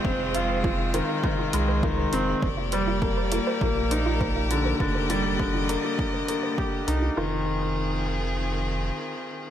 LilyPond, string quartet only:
\new Staff \with { instrumentName = "String quartet" } { \time 4/4 \key f \dorian \tempo 4 = 101 << { c'1 | d''1 | ees''1 | <ees c' f' aes'>1 | } \\ { <aes f'>1 | <bes g'>1~ | <bes g'>1 | r1 | } >> }